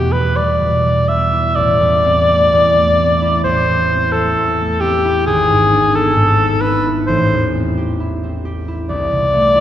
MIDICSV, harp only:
0, 0, Header, 1, 2, 480
1, 0, Start_track
1, 0, Tempo, 943396
1, 802, Time_signature, 4, 2, 24, 8
1, 1755, Tempo, 913242
1, 4155, Tempo, 884956
1, 5016, End_track
2, 0, Start_track
2, 0, Title_t, "Harp"
2, 0, Program_c, 0, 46
2, 0, Note_on_c, 0, 40, 53
2, 0, Note_on_c, 0, 47, 35
2, 0, Note_on_c, 0, 59, 42
2, 67, Note_off_c, 0, 59, 0
2, 73, Note_on_c, 0, 59, 44
2, 196, Note_on_c, 0, 55, 43
2, 303, Note_off_c, 0, 47, 0
2, 309, Note_on_c, 0, 47, 44
2, 426, Note_off_c, 0, 55, 0
2, 432, Note_on_c, 0, 55, 39
2, 551, Note_off_c, 0, 59, 0
2, 557, Note_on_c, 0, 59, 45
2, 677, Note_on_c, 0, 64, 47
2, 796, Note_on_c, 0, 33, 53
2, 817, Note_off_c, 0, 47, 0
2, 818, Note_off_c, 0, 55, 0
2, 819, Note_off_c, 0, 40, 0
2, 820, Note_off_c, 0, 59, 0
2, 917, Note_on_c, 0, 40, 43
2, 1041, Note_on_c, 0, 60, 47
2, 1165, Note_on_c, 0, 57, 50
2, 1279, Note_off_c, 0, 40, 0
2, 1285, Note_on_c, 0, 40, 48
2, 1391, Note_off_c, 0, 57, 0
2, 1397, Note_on_c, 0, 57, 47
2, 1513, Note_off_c, 0, 60, 0
2, 1519, Note_on_c, 0, 60, 48
2, 1630, Note_off_c, 0, 64, 0
2, 1637, Note_on_c, 0, 64, 51
2, 1746, Note_off_c, 0, 33, 0
2, 1752, Note_on_c, 0, 33, 55
2, 1870, Note_off_c, 0, 40, 0
2, 1876, Note_on_c, 0, 40, 42
2, 1996, Note_off_c, 0, 60, 0
2, 2002, Note_on_c, 0, 60, 48
2, 2115, Note_off_c, 0, 57, 0
2, 2121, Note_on_c, 0, 57, 46
2, 2233, Note_off_c, 0, 40, 0
2, 2239, Note_on_c, 0, 40, 48
2, 2350, Note_off_c, 0, 57, 0
2, 2356, Note_on_c, 0, 57, 45
2, 2471, Note_off_c, 0, 60, 0
2, 2477, Note_on_c, 0, 60, 58
2, 2589, Note_off_c, 0, 64, 0
2, 2595, Note_on_c, 0, 64, 51
2, 2712, Note_on_c, 0, 32, 63
2, 2733, Note_off_c, 0, 33, 0
2, 2735, Note_off_c, 0, 57, 0
2, 2736, Note_off_c, 0, 40, 0
2, 2736, Note_off_c, 0, 60, 0
2, 2835, Note_on_c, 0, 44, 52
2, 2951, Note_on_c, 0, 62, 56
2, 3071, Note_on_c, 0, 59, 50
2, 3175, Note_off_c, 0, 44, 0
2, 3182, Note_on_c, 0, 44, 53
2, 3297, Note_off_c, 0, 59, 0
2, 3303, Note_on_c, 0, 59, 51
2, 3415, Note_off_c, 0, 62, 0
2, 3421, Note_on_c, 0, 62, 50
2, 3539, Note_off_c, 0, 64, 0
2, 3545, Note_on_c, 0, 64, 54
2, 3666, Note_on_c, 0, 33, 62
2, 3682, Note_off_c, 0, 44, 0
2, 3684, Note_off_c, 0, 32, 0
2, 3684, Note_off_c, 0, 59, 0
2, 3684, Note_off_c, 0, 62, 0
2, 3790, Note_on_c, 0, 40, 42
2, 3908, Note_on_c, 0, 60, 58
2, 4028, Note_on_c, 0, 67, 54
2, 4140, Note_off_c, 0, 64, 0
2, 4147, Note_on_c, 0, 64, 56
2, 4267, Note_off_c, 0, 60, 0
2, 4274, Note_on_c, 0, 60, 49
2, 4384, Note_off_c, 0, 67, 0
2, 4390, Note_on_c, 0, 67, 62
2, 4509, Note_off_c, 0, 64, 0
2, 4516, Note_on_c, 0, 64, 53
2, 4629, Note_on_c, 0, 36, 60
2, 4655, Note_off_c, 0, 67, 0
2, 4659, Note_off_c, 0, 33, 0
2, 4660, Note_off_c, 0, 40, 0
2, 4754, Note_on_c, 0, 48, 49
2, 4868, Note_on_c, 0, 57, 57
2, 4982, Note_off_c, 0, 64, 0
2, 4989, Note_on_c, 0, 64, 58
2, 5016, Note_off_c, 0, 36, 0
2, 5016, Note_off_c, 0, 48, 0
2, 5016, Note_off_c, 0, 57, 0
2, 5016, Note_off_c, 0, 60, 0
2, 5016, Note_off_c, 0, 64, 0
2, 5016, End_track
0, 0, End_of_file